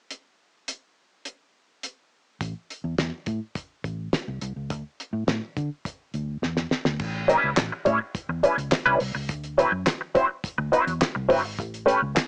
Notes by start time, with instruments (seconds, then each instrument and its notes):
0.11 closed hi-hat
0.68 closed hi-hat
1.25 closed hi-hat
1.83 closed hi-hat
2.41 fingered electric bass A1, kick, closed hi-hat
2.70 closed hi-hat
2.84 fingered electric bass E2
2.98 fingered electric bass E2, snare, closed hi-hat
3.26 fingered electric bass A2, kick, closed hi-hat
3.55 kick, closed hi-hat
3.84 fingered electric bass A1, kick, closed hi-hat
4.13 snare, closed hi-hat
4.28 fingered electric bass C2
4.41 fingered electric bass C2, closed hi-hat
4.56 fingered electric bass C#2
4.70 fingered electric bass D2, kick, closed hi-hat
5.00 closed hi-hat
5.13 fingered electric bass A2
5.27 fingered electric bass A2, snare, closed hi-hat
5.57 fingered electric bass D3, kick, closed hi-hat
5.85 kick, closed hi-hat
6.14 fingered electric bass D2, closed hi-hat
6.42 fingered electric bass E2, snare
6.57 snare
6.71 snare
6.85 fingered electric bass D2, snare
6.99 fingered electric bass A1, kick, crash
7.28 clean electric guitar G3 C#4 E4 B4, closed hi-hat
7.44 fingered electric bass C#2
7.57 fingered electric bass A1, muted clean electric guitar stroke, snare, clap, closed hi-hat
7.72 muted clean electric guitar stroke
7.85 fingered electric bass A2, clean electric guitar G3 C#4 E4 C#5, kick, closed hi-hat
8.15 kick, closed hi-hat
8.29 fingered electric bass E2, muted clean electric guitar stroke
8.43 clean electric guitar G3 C#4 E4 B4, closed hi-hat
8.57 fingered electric bass C#2, muted clean electric guitar stroke, closed hi-hat
8.72 muted clean electric guitar stroke, snare, clap, closed hi-hat
8.86 fingered electric bass C2, clean electric guitar G3 C#4 E4 B4
9.00 fingered electric bass C2, muted clean electric guitar stroke, open hi-hat
9.15 fingered electric bass C#2, muted clean electric guitar stroke
9.29 fingered electric bass D2, kick, closed hi-hat
9.44 closed hi-hat
9.58 clean electric guitar F#3 C4 E4 B4, closed hi-hat
9.72 fingered electric bass F#2
9.86 muted clean electric guitar stroke, snare, clap, closed hi-hat
10.01 muted clean electric guitar stroke
10.15 clean electric guitar F#3 C4 E4 C5, kick, closed hi-hat
10.29 muted clean electric guitar stroke
10.44 kick, closed hi-hat
10.58 fingered electric bass D2, muted clean electric guitar stroke
10.72 clean electric guitar F#3 C4 E4 C5, closed hi-hat
10.86 fingered electric bass E2, muted clean electric guitar stroke, closed hi-hat
11.02 snare, clap, closed hi-hat
11.15 fingered electric bass C2, muted clean electric guitar stroke
11.29 fingered electric bass G1, clean electric guitar F#3 C4 E4 B4, kick, open hi-hat
11.43 fingered electric bass G#1, muted clean electric guitar stroke
11.59 fingered electric bass A1, kick, closed hi-hat
11.74 closed hi-hat
11.86 clean electric guitar A3 C#4 G4 B4, closed hi-hat
12.02 fingered electric bass C#2
12.15 muted clean electric guitar stroke, snare, clap, closed hi-hat